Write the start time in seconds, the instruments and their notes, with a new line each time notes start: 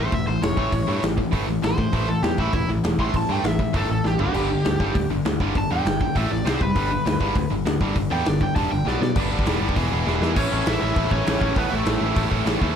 Already playing: distorted electric guitar A2
0.00 distorted electric guitar E3 A3, overdriven electric guitar C5
0.12 picked electric bass E1, distorted electric guitar A2 E3, overdriven electric guitar E5, kick, open hi-hat
0.27 picked electric bass A1, distorted electric guitar A2 E3, overdriven electric guitar C5
0.41 picked electric bass E1, distorted electric guitar A2 E3, overdriven electric guitar C#5, snare, open hi-hat
0.56 picked electric bass A1, distorted electric guitar A2 E3 A3, kick
0.72 picked electric bass A1, distorted electric guitar A2 E3, kick, open hi-hat
0.87 picked electric bass G2, distorted electric guitar A2 E3 A3
1.02 picked electric bass A1, distorted electric guitar A2 E3, snare, open hi-hat
1.17 distorted electric guitar A2 E3, kick
1.31 picked electric bass G1, distorted electric guitar A2 E3 A3, kick, open hi-hat
1.47 picked electric bass A1, distorted electric guitar A2 E3
1.62 picked electric bass A1, distorted electric guitar A2 E3, overdriven electric guitar C5, snare, open hi-hat
1.78 distorted electric guitar A2 E3, picked electric bass A2, kick
1.92 picked electric bass A1, distorted electric guitar A2 E3 A3, kick, open hi-hat
2.08 distorted electric guitar A2 E3, overdriven electric guitar A4
2.23 picked electric bass E2, distorted electric guitar A2 E3, overdriven electric guitar G4, snare, open hi-hat
2.38 picked electric bass A1, distorted electric guitar A2 E3 A3, overdriven electric guitar E4, kick
2.53 picked electric bass E1, distorted electric guitar A2 E3, overdriven electric guitar E4, kick, open hi-hat
2.69 picked electric bass A1, distorted electric guitar A2 E3
2.84 picked electric bass E1, distorted electric guitar A2 E3, snare, open hi-hat
2.99 picked electric bass A1, distorted electric guitar A2 E3 A3, overdriven electric guitar C6, kick
3.14 picked electric bass A1, distorted electric guitar A2 E3, overdriven electric guitar A5, kick, open hi-hat
3.29 picked electric bass G2, distorted electric guitar A2 E3 A3, overdriven electric guitar G5
3.44 picked electric bass A1, distorted electric guitar A2 E3, overdriven electric guitar E5, snare, open hi-hat
3.59 distorted electric guitar A2 E3, kick
3.73 picked electric bass G1, distorted electric guitar A2 E3 A3, overdriven electric guitar A4, kick, open hi-hat
3.89 picked electric bass A1, distorted electric guitar A2 E3, overdriven electric guitar A4
4.04 picked electric bass A1, distorted electric guitar A2 E3, overdriven electric guitar G4, snare
4.18 picked electric bass G1, distorted electric guitar G2 D3 G3, overdriven electric guitar G4, floor tom
4.34 picked electric bass G1, distorted electric guitar G2 D3 G3, crash
4.49 distorted electric guitar G2 D3
4.65 picked electric bass D2, distorted electric guitar G2 D3, snare, open hi-hat
4.80 picked electric bass G1, distorted electric guitar G2 D3 G3, kick
4.95 picked electric bass D2, distorted electric guitar G2 D3, kick, open hi-hat
5.09 picked electric bass G1, distorted electric guitar G2 D3
5.25 picked electric bass D2, distorted electric guitar G2 D3, snare, open hi-hat
5.40 picked electric bass G1, distorted electric guitar G2 D3 G3, kick
5.55 picked electric bass G1, distorted electric guitar G2 D3, overdriven electric guitar A5, kick, open hi-hat
5.70 picked electric bass E2, distorted electric guitar G2 D3 G3, overdriven electric guitar G5
5.85 picked electric bass G1, distorted electric guitar G2 D3, snare, open hi-hat
6.01 distorted electric guitar G2 D3, overdriven electric guitar G5, kick
6.15 picked electric bass A1, distorted electric guitar A2 E3 A3, overdriven electric guitar E5, kick, open hi-hat
6.30 picked electric bass A1, distorted electric guitar A2 E3, overdriven electric guitar D5
6.45 picked electric bass C2, distorted electric guitar C3 G3 C4, overdriven electric guitar C5, snare, open hi-hat
6.61 picked electric bass F#1, distorted electric guitar C3 G3, overdriven electric guitar B4, kick
6.75 picked electric bass G1, distorted electric guitar G2 D3 G3, kick, open hi-hat
6.91 distorted electric guitar G2 D3
7.06 picked electric bass D2, distorted electric guitar G2 D3, snare, open hi-hat
7.20 picked electric bass G1, distorted electric guitar G2 D3 G3, kick
7.35 picked electric bass D2, distorted electric guitar G2 D3, kick, open hi-hat
7.50 picked electric bass G1, distorted electric guitar G2 D3
7.65 picked electric bass D2, distorted electric guitar G2 D3, snare, open hi-hat
7.81 picked electric bass G1, distorted electric guitar G2 D3 G3, kick
7.96 picked electric bass G1, distorted electric guitar G2 D3, kick, open hi-hat
8.10 picked electric bass E2, distorted electric guitar G2 D3 G3, overdriven electric guitar G5
8.25 picked electric bass G1, distorted electric guitar G2 D3, overdriven electric guitar D5, snare, open hi-hat
8.41 distorted electric guitar G2 D3, overdriven electric guitar G5, kick
8.56 picked electric bass E1, distorted electric guitar G2 D3 G3, overdriven electric guitar A5, kick, open hi-hat
8.71 picked electric bass G1, distorted electric guitar G2 D3, overdriven electric guitar G5
8.86 picked electric bass B1, distorted electric guitar B2 F#3 B3, overdriven electric guitar D5, snare
9.01 picked electric bass B2, distorted electric guitar B2 F#3, overdriven electric guitar D5, snare
9.15 picked electric bass G1, distorted electric guitar G2 D3 G3 B3 D4 G4, kick, crash
9.31 picked electric bass G1, distorted electric guitar G2 D3 G3 B3 D4 G4
9.39 kick
9.46 picked electric bass E1, distorted electric guitar G2 D3 G3 B3 D4 G4, snare, open hi-hat
9.61 picked electric bass G1, distorted electric guitar G2 D3 G3 B3 D4 G4
9.69 kick
9.76 picked electric bass E1, distorted electric guitar E2 B2 E3 B3 E4 G#4, kick, open hi-hat
9.92 picked electric bass E1, distorted electric guitar E2 B2 E3 B3 E4 G#4
10.06 picked electric bass E1, distorted electric guitar E2 B2 E3 B3 E4 G#4, snare
10.21 picked electric bass E2, distorted electric guitar E2 B2 E3 B3 E4 G#4, snare
10.36 picked electric bass A1, distorted electric guitar A2 E3 A3 C#4 E4, overdriven electric guitar C#4 C#5, kick, crash
10.51 picked electric bass A1, distorted electric guitar A2 E3 A3 C#4 E4
10.65 picked electric bass A1, distorted electric guitar A2 E3 A3 C#4 E4, overdriven electric guitar E4 E5, snare, open hi-hat
10.80 picked electric bass A1, distorted electric guitar A2 E3 A3 C#4 E4, overdriven electric guitar E4 E5
10.95 picked electric bass A1, distorted electric guitar A2 E3 A3 C#4 E4, kick, open hi-hat
11.10 picked electric bass A1, distorted electric guitar A2 E3 A3 C#4 E4, overdriven electric guitar C#4 C#5, kick
11.26 picked electric bass A1, distorted electric guitar A2 E3 A3 C#4 E4, snare, open hi-hat
11.41 picked electric bass A1, distorted electric guitar A2 E3 A3 C#4 E4, kick
11.56 picked electric bass A1, distorted electric guitar A2 E3 A3 C#4 E4, overdriven electric guitar B3 B4, kick, open hi-hat
11.71 picked electric bass A1, distorted electric guitar A2 E3 A3 C#4 E4, overdriven electric guitar A3 A4
11.85 picked electric bass A1, distorted electric guitar A2 E3 A3 C#4 E4, snare, open hi-hat
12.00 picked electric bass A1, distorted electric guitar A2 E3 A3 C#4 E4
12.15 picked electric bass A1, distorted electric guitar A2 E3 A3 C#4 E4, kick, open hi-hat
12.30 picked electric bass A1, distorted electric guitar A2 E3 A3 C#4 E4, kick
12.45 picked electric bass A1, distorted electric guitar A2 E3 A3 C#4 E4, snare, open hi-hat
12.61 picked electric bass D#2, distorted electric guitar A2 E3 A3 C#4 E4, kick